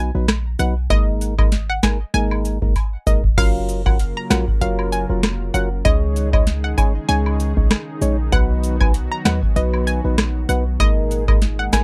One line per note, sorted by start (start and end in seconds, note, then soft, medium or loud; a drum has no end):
0.00 0.11 B1 loud
0.00 0.10 F#3 loud
0.00 0.11 B3 medium
0.00 0.11 D#4 medium
0.00 0.11 B4 loud
0.00 0.10 G#5 medium
0.14 0.55 A#1 medium
0.14 0.26 F#3 medium
0.14 0.26 B3 medium
0.14 0.27 D#4 medium
0.14 0.27 B4 medium
0.28 cross-stick loud
0.28 cross-stick medium
0.28 snare loud
0.28 closed hi-hat medium
0.28 high woodblock medium
0.59 0.88 B1 medium
0.59 0.74 F#3 medium
0.59 0.74 B3 medium
0.59 0.74 D#4 medium
0.59 0.74 B4 medium
0.59 0.72 F#5 medium
0.59 closed hi-hat medium
0.59 cabasa medium
0.90 1.79 G#1 loud
0.90 1.34 G#3 loud
0.90 1.34 A#3 medium
0.90 1.34 D#4 medium
0.90 1.34 A#4 loud
0.90 1.13 D#5 loud
0.90 kick loud
0.90 closed hi-hat medium
0.90 high woodblock medium
1.21 closed hi-hat medium
1.21 cabasa medium
1.38 1.50 G#3 medium
1.38 1.50 A#3 medium
1.38 1.50 D#4 medium
1.38 1.50 A#4 medium
1.38 1.49 D#5 medium
1.38 kick loud
1.38 high woodblock medium
1.52 snare medium
1.52 closed hi-hat medium
1.70 1.80 F#5 medium
1.83 1.98 G#3 medium
1.83 1.98 A#3 medium
1.83 1.98 D#4 medium
1.83 1.98 A#4 medium
1.83 1.96 G#5 medium
1.83 kick medium
1.83 cross-stick loud
1.83 snare loud
1.83 closed hi-hat medium
1.83 cabasa medium
1.83 high woodblock medium
2.14 2.58 G#1 loud
2.14 2.58 G#3 loud
2.14 2.58 A#3 medium
2.14 2.58 D#4 medium
2.14 2.58 A#4 loud
2.14 2.59 G#5 loud
2.14 closed hi-hat medium
2.31 high woodblock medium
2.45 closed hi-hat medium
2.45 cabasa medium
2.62 2.75 F#1 medium
2.62 2.74 G#3 medium
2.62 2.74 A#3 medium
2.62 2.74 D#4 medium
2.62 2.74 A#4 medium
2.62 kick medium
2.76 kick medium
2.76 closed hi-hat medium
2.76 high woodblock medium
3.07 3.35 F1 medium
3.07 3.22 G#3 medium
3.07 3.22 A#3 medium
3.07 3.22 D#4 medium
3.07 3.22 A#4 medium
3.07 3.20 D#5 medium
3.07 kick loud
3.07 closed hi-hat medium
3.07 cabasa medium
3.24 kick loud
3.37 4.13 F#1 loud
3.37 5.83 C#3 medium
3.37 3.82 F#3 loud
3.37 5.83 F#3 medium
3.37 5.83 A#3 medium
3.37 3.82 C#4 medium
3.37 5.83 F4 medium
3.37 3.82 F4 medium
3.37 5.83 A#4 medium
3.37 3.82 A#4 loud
3.37 3.61 F5 loud
3.37 kick loud
3.37 crash medium
3.37 high woodblock medium
3.69 closed hi-hat medium
3.69 cabasa medium
3.86 3.97 F#3 medium
3.86 3.98 C#4 medium
3.86 3.98 F4 medium
3.86 3.98 A#4 medium
3.86 3.96 F#5 medium
3.86 kick loud
3.86 high woodblock medium
3.99 closed hi-hat medium
4.17 4.27 A#5 medium
4.30 4.46 A#1 medium
4.30 4.45 F#3 medium
4.30 4.45 C#4 medium
4.30 4.45 F4 medium
4.30 4.46 A#4 medium
4.30 4.43 F#5 medium
4.30 cross-stick loud
4.30 snare loud
4.30 closed hi-hat medium
4.30 cabasa medium
4.30 high woodblock medium
4.48 kick loud
4.61 5.06 F#1 medium
4.61 5.05 F#3 loud
4.61 5.06 C#4 medium
4.61 5.06 F4 medium
4.61 5.06 A#4 loud
4.61 4.74 F5 medium
4.61 closed hi-hat medium
4.79 high woodblock medium
4.92 5.05 G#5 medium
4.92 closed hi-hat medium
4.92 cabasa medium
5.09 5.50 F1 loud
5.09 5.21 F#3 medium
5.09 5.21 C#4 medium
5.09 5.21 F4 medium
5.09 5.22 A#4 medium
5.23 cross-stick loud
5.23 cross-stick medium
5.23 snare loud
5.23 closed hi-hat medium
5.23 high woodblock medium
5.54 5.82 F#1 medium
5.54 5.69 F#3 medium
5.54 5.69 C#4 medium
5.54 5.69 F4 medium
5.54 5.69 A#4 medium
5.54 5.67 F#5 medium
5.54 closed hi-hat medium
5.54 cabasa medium
5.85 6.74 C#2 loud
5.85 8.30 C#3 medium
5.85 10.76 D#3 medium
5.85 6.29 G#3 loud
5.85 8.30 G#3 medium
5.85 6.29 C#4 loud
5.85 10.76 D#4 medium
5.85 6.29 D#4 medium
5.85 8.30 G#4 medium
5.85 6.29 C#5 loud
5.85 6.08 D#5 loud
5.85 kick loud
5.85 closed hi-hat medium
5.85 high woodblock medium
6.16 closed hi-hat medium
6.16 cabasa medium
6.33 6.45 G#3 medium
6.33 6.45 C#4 medium
6.33 6.45 D#4 medium
6.33 6.45 C#5 medium
6.33 6.43 D#5 medium
6.33 kick loud
6.33 high woodblock medium
6.47 snare medium
6.47 closed hi-hat medium
6.64 6.74 F#5 medium
6.78 6.93 G#3 medium
6.78 6.93 C#4 medium
6.78 6.93 D#4 medium
6.78 6.93 C#5 medium
6.78 6.91 G#5 medium
6.78 kick loud
6.78 closed hi-hat medium
6.78 cabasa medium
6.78 high woodblock medium
7.09 7.53 C#2 loud
7.09 7.53 G#3 medium
7.09 7.53 C#4 medium
7.09 7.53 D#4 medium
7.09 7.53 C#5 loud
7.09 7.54 G#5 loud
7.09 closed hi-hat medium
7.26 high woodblock medium
7.40 closed hi-hat medium
7.40 cabasa medium
7.57 7.69 B1 medium
7.57 7.69 G#3 medium
7.57 7.69 C#4 medium
7.57 7.69 D#4 medium
7.57 7.69 C#5 medium
7.57 kick medium
7.71 cross-stick loud
7.71 snare loud
7.71 closed hi-hat medium
7.71 high woodblock medium
8.01 8.30 A#1 loud
8.01 8.16 G#3 medium
8.01 8.16 C#4 medium
8.01 8.17 D#4 medium
8.01 8.17 C#5 medium
8.01 closed hi-hat medium
8.01 cabasa medium
8.32 9.08 B1 loud
8.32 8.77 F#3 loud
8.32 10.78 F#3 medium
8.32 8.77 B3 medium
8.32 10.78 B3 medium
8.32 8.77 D#4 medium
8.32 10.78 F#4 medium
8.32 8.77 B4 loud
8.32 8.55 F#5 loud
8.32 kick loud
8.32 closed hi-hat medium
8.32 high woodblock medium
8.63 closed hi-hat medium
8.63 cabasa medium
8.80 8.92 F#3 medium
8.80 8.92 B3 medium
8.80 8.93 D#4 medium
8.80 8.93 B4 medium
8.80 8.91 G#5 medium
8.80 kick loud
8.80 high woodblock medium
8.94 closed hi-hat medium
9.12 9.22 A#5 medium
9.25 9.41 D#2 loud
9.25 9.40 F#3 medium
9.25 9.40 B3 medium
9.25 9.40 D#4 medium
9.25 9.40 B4 medium
9.25 9.38 F#5 medium
9.25 cross-stick loud
9.25 snare loud
9.25 closed hi-hat medium
9.25 cabasa medium
9.25 high woodblock medium
9.43 kick loud
9.56 10.01 B1 loud
9.56 10.00 F#3 loud
9.56 10.00 B3 medium
9.56 10.00 D#4 medium
9.56 10.01 B4 loud
9.56 9.69 D#5 medium
9.56 closed hi-hat medium
9.74 high woodblock medium
9.87 10.00 G#5 medium
9.87 closed hi-hat medium
9.87 cabasa medium
10.04 10.45 A#1 medium
10.04 10.16 F#3 medium
10.04 10.16 B3 medium
10.04 10.16 D#4 medium
10.04 10.16 B4 medium
10.18 cross-stick loud
10.18 snare loud
10.18 closed hi-hat medium
10.18 high woodblock medium
10.49 10.77 B1 loud
10.49 10.64 F#3 medium
10.49 10.64 B3 medium
10.49 10.64 D#4 medium
10.49 10.64 B4 medium
10.49 10.62 F#5 medium
10.49 closed hi-hat medium
10.49 cabasa medium
10.80 11.69 G#1 loud
10.80 11.84 A#2 medium
10.80 11.84 D#3 medium
10.80 11.24 G#3 loud
10.80 11.84 G#3 medium
10.80 11.24 A#3 medium
10.80 11.84 D#4 medium
10.80 11.24 D#4 medium
10.80 11.84 G#4 medium
10.80 11.24 A#4 loud
10.80 11.03 D#5 loud
10.80 kick loud
10.80 closed hi-hat medium
10.80 high woodblock medium
11.11 closed hi-hat medium
11.11 cabasa medium
11.28 11.40 G#3 medium
11.28 11.40 A#3 medium
11.28 11.40 D#4 medium
11.28 11.40 A#4 medium
11.28 11.38 D#5 medium
11.28 kick loud
11.28 high woodblock medium
11.42 snare medium
11.42 closed hi-hat medium
11.59 11.69 F#5 medium
11.72 11.84 G#3 medium
11.72 11.84 A#3 medium
11.72 11.84 D#4 medium
11.72 11.84 A#4 medium
11.72 11.84 G#5 medium
11.72 kick medium
11.72 cross-stick loud
11.72 snare loud
11.72 closed hi-hat medium
11.72 cabasa medium
11.72 high woodblock medium